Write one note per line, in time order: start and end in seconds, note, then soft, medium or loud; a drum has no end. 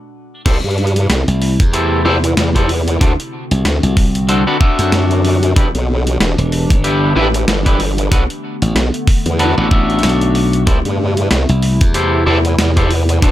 0.00 0.42 D4 medium
0.00 0.43 F#4 medium
0.00 0.43 A4 medium
0.00 0.43 B4 medium
0.46 0.61 C2 medium
0.46 2.99 C3 medium
0.46 2.99 A3 medium
0.46 2.99 E4 loud
0.46 0.57 E4 medium
0.46 0.57 G4 medium
0.46 0.57 A4 medium
0.46 0.57 C5 medium
0.46 kick loud
0.46 closed hi-hat medium
0.46 crash loud
0.64 1.07 G2 medium
0.64 closed hi-hat soft
0.71 closed hi-hat soft
0.78 closed hi-hat soft
0.87 closed hi-hat soft
0.96 closed hi-hat medium
1.10 1.25 C2 loud
1.10 snare loud
1.10 closed hi-hat medium
1.28 1.57 C2 medium
1.28 closed hi-hat soft
1.42 open hi-hat medium
1.60 2.03 E2 loud
1.60 kick loud
1.60 closed hi-hat medium
1.73 2.02 E4 medium
1.73 2.02 G4 medium
1.73 2.02 A4 medium
1.73 2.02 C5 medium
1.73 closed hi-hat medium
2.05 2.35 E2 loud
2.05 2.16 E4 loud
2.05 2.16 G4 medium
2.05 2.16 A4 medium
2.05 2.16 C5 loud
2.24 closed hi-hat medium
2.37 2.99 E2 loud
2.37 snare loud
2.37 closed hi-hat medium
2.55 2.69 E4 medium
2.55 2.69 G4 medium
2.55 2.69 A4 medium
2.55 2.69 C5 medium
2.55 kick medium
2.55 closed hi-hat soft
2.69 open hi-hat medium
2.88 closed hi-hat medium
3.01 3.17 D2 medium
3.01 5.54 D3 medium
3.01 5.54 C4 medium
3.01 3.12 D4 loud
3.01 3.12 F#4 medium
3.01 5.54 F#4 medium
3.01 3.12 A4 medium
3.01 3.12 C5 loud
3.01 kick loud
3.01 closed hi-hat medium
3.20 closed hi-hat soft
3.51 3.63 C2 loud
3.51 closed hi-hat medium
3.65 3.80 D2 loud
3.65 snare loud
3.65 closed hi-hat medium
3.83 4.44 C2 loud
3.83 closed hi-hat soft
3.97 kick loud
3.97 open hi-hat medium
4.15 closed hi-hat medium
4.29 4.44 D4 medium
4.29 4.44 F#4 medium
4.29 4.44 A4 medium
4.29 4.44 C5 medium
4.29 closed hi-hat medium
4.47 4.59 D4 medium
4.47 4.59 F#4 medium
4.47 4.59 A4 medium
4.47 4.59 B4 loud
4.60 5.53 D4 medium
4.60 5.53 F#4 medium
4.60 5.53 A4 medium
4.60 5.53 E5 loud
4.60 kick loud
4.79 4.90 F#2 medium
4.79 closed hi-hat medium
4.92 5.54 F#2 loud
4.92 snare loud
4.92 closed hi-hat medium
5.11 closed hi-hat soft
5.25 open hi-hat medium
5.43 closed hi-hat medium
5.56 5.72 E1 medium
5.56 8.09 E3 medium
5.56 5.67 D4 medium
5.56 8.09 D4 medium
5.56 5.67 E4 medium
5.56 5.67 G4 medium
5.56 8.09 G4 medium
5.56 5.67 B4 medium
5.56 kick loud
5.56 closed hi-hat medium
5.75 6.18 B1 medium
5.75 closed hi-hat soft
6.07 closed hi-hat medium
6.20 6.36 E1 loud
6.20 snare loud
6.20 closed hi-hat medium
6.38 6.67 E1 loud
6.38 closed hi-hat soft
6.52 open hi-hat medium
6.70 7.14 G1 loud
6.70 kick loud
6.70 closed hi-hat medium
6.84 7.13 D4 medium
6.84 7.13 E4 medium
6.84 7.13 G4 medium
6.84 7.13 B4 medium
6.84 closed hi-hat medium
7.16 7.46 A1 loud
7.16 7.27 D4 loud
7.16 7.27 E4 medium
7.16 7.27 G4 medium
7.16 7.27 B4 loud
7.34 closed hi-hat medium
7.48 8.10 G1 loud
7.48 snare loud
7.48 closed hi-hat medium
7.66 7.79 D4 medium
7.66 7.79 E4 medium
7.66 7.79 G4 medium
7.66 7.79 B4 loud
7.66 kick medium
7.66 closed hi-hat soft
7.80 open hi-hat medium
7.98 closed hi-hat medium
8.11 8.27 B1 medium
8.11 10.65 D3 medium
8.11 13.18 A3 medium
8.11 10.65 B3 medium
8.11 8.23 D4 medium
8.11 8.23 F#4 medium
8.11 8.23 A4 medium
8.11 8.23 B4 loud
8.11 kick loud
8.11 closed hi-hat medium
8.30 closed hi-hat soft
8.62 8.73 A1 medium
8.62 closed hi-hat medium
8.75 8.91 B1 loud
8.75 snare loud
8.75 closed hi-hat medium
8.94 closed hi-hat soft
9.07 kick loud
9.07 open hi-hat medium
9.26 9.55 E2 loud
9.26 closed hi-hat medium
9.39 9.55 D4 medium
9.39 9.55 F#4 medium
9.39 9.55 A4 medium
9.39 9.55 B4 medium
9.39 closed hi-hat medium
9.58 10.01 A1 loud
9.58 9.69 D4 medium
9.58 9.69 F#4 medium
9.58 9.69 A4 medium
9.58 9.69 B4 medium
9.71 10.64 D4 medium
9.71 10.64 F#4 medium
9.71 10.64 A4 medium
9.71 10.64 E5 loud
9.71 kick loud
9.90 closed hi-hat soft
9.99 closed hi-hat soft
10.03 10.65 B1 loud
10.03 snare loud
10.03 closed hi-hat medium
10.09 closed hi-hat soft
10.21 closed hi-hat soft
10.35 open hi-hat medium
10.53 closed hi-hat medium
10.67 10.83 C2 loud
10.67 13.20 C3 medium
10.67 13.20 E4 medium
10.67 10.78 E4 medium
10.67 10.78 G4 medium
10.67 10.78 A4 medium
10.67 10.78 C5 medium
10.67 kick loud
10.67 closed hi-hat medium
10.85 11.29 G2 loud
10.85 closed hi-hat soft
11.17 closed hi-hat medium
11.31 11.46 C2 loud
11.31 snare loud
11.31 closed hi-hat medium
11.49 11.78 C2 loud
11.49 closed hi-hat soft
11.62 open hi-hat medium
11.81 12.25 E2 loud
11.81 kick loud
11.81 closed hi-hat medium
11.94 12.23 E4 medium
11.94 12.23 G4 medium
11.94 12.23 A4 medium
11.94 12.23 C5 medium
11.94 closed hi-hat medium
12.26 12.56 E2 loud
12.26 12.38 E4 loud
12.26 12.38 G4 medium
12.26 12.38 A4 medium
12.26 12.38 C5 loud
12.45 closed hi-hat medium
12.59 13.20 E2 loud
12.59 snare loud
12.59 closed hi-hat medium
12.77 12.90 E4 medium
12.77 12.90 G4 medium
12.77 12.90 A4 medium
12.77 12.90 C5 medium
12.77 kick medium
12.77 closed hi-hat soft
12.91 open hi-hat medium
13.09 closed hi-hat medium
13.22 13.31 D2 loud
13.22 13.31 D3 medium
13.22 13.31 C4 medium
13.22 13.31 D4 medium
13.22 13.31 F#4 loud
13.22 13.31 F#4 medium
13.22 13.31 A4 medium
13.22 13.31 C5 loud
13.22 kick loud
13.22 closed hi-hat medium